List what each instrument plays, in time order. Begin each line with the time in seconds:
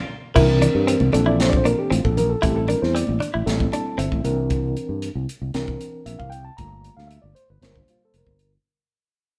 0.35 fretless electric bass C2, reed electric piano E3 C4 D4 A#4, clean electric guitar E4, kick, crash, low conga
0.61 clean electric guitar D4, closed hi-hat, low conga
0.75 fretless electric bass G2
0.87 clean electric guitar C4, closed hi-hat
1.00 fretless electric bass C2, high conga
1.12 fretless electric bass A#1, reed electric piano E3 C4 D4 A4, clean electric guitar D4, closed hi-hat, low conga
1.26 clean electric guitar E4, reed electric piano D5
1.40 reed electric piano C5, snare, closed hi-hat
1.49 reed electric piano D5, kick, high conga
1.57 reed electric piano C5
1.65 clean electric guitar D4, reed electric piano A#4, closed hi-hat, high conga
1.79 reed electric piano G4
1.90 fretless electric bass A1, clean electric guitar C4, reed electric piano F4, closed hi-hat
2.04 fretless electric bass A#1, reed electric piano A4, kick
2.17 reed electric piano A#4, closed hi-hat, high conga, low conga
2.30 reed electric piano A4
2.42 fretless electric bass A1, reed electric piano G3 C4 E4 G4 A4, clean electric guitar E4, kick, closed hi-hat, low conga
2.56 reed electric piano A4
2.68 clean electric guitar D4, reed electric piano A#4, closed hi-hat, low conga
2.82 fretless electric bass E2, reed electric piano C5, snare
2.95 clean electric guitar C4, reed electric piano D5, closed hi-hat
3.07 fretless electric bass A1, high conga
3.20 clean electric guitar D4, closed hi-hat, low conga
3.34 fretless electric bass A1, clean electric guitar E4
3.46 fretless electric bass A1, reed electric piano G3 C4 E4 A4, snare, closed hi-hat
3.59 kick, high conga
3.72 clean electric guitar D4, reed electric piano A5, closed hi-hat, high conga
3.98 fretless electric bass G1, clean electric guitar C4, reed electric piano E5, closed hi-hat
4.12 fretless electric bass A1, kick
4.24 fretless electric bass C2, reed electric piano E3 C4 D4 A#4, closed hi-hat, high conga, low conga
4.50 kick, closed hi-hat
4.77 closed hi-hat
4.89 fretless electric bass G2
5.02 closed hi-hat
5.15 fretless electric bass C2
5.29 closed hi-hat
5.42 fretless electric bass C2
5.54 fretless electric bass C2, reed electric piano E3 C4 D4 A#4, snare, closed hi-hat
5.68 kick
5.81 closed hi-hat
6.06 fretless electric bass A#1, reed electric piano E5, closed hi-hat
6.19 fretless electric bass C2, reed electric piano F5, kick
6.30 reed electric piano G5, closed hi-hat
6.45 reed electric piano A5
6.57 fretless electric bass G1, reed electric piano G3 A3 A#3 F4 A#5, kick, closed hi-hat
6.84 closed hi-hat
6.97 fretless electric bass D2, reed electric piano F5, snare
7.07 reed electric piano E5, closed hi-hat
7.22 fretless electric bass G1, reed electric piano D5
7.35 reed electric piano C5, closed hi-hat
7.50 fretless electric bass G1, reed electric piano B4
7.62 fretless electric bass G1, reed electric piano G3 A#3 F4 A#4 C5, snare, closed hi-hat
7.76 reed electric piano D4, kick
7.88 reed electric piano F4, closed hi-hat
8.05 reed electric piano A4
8.14 fretless electric bass F1, reed electric piano A#4, closed hi-hat
8.27 fretless electric bass G1, kick
8.39 closed hi-hat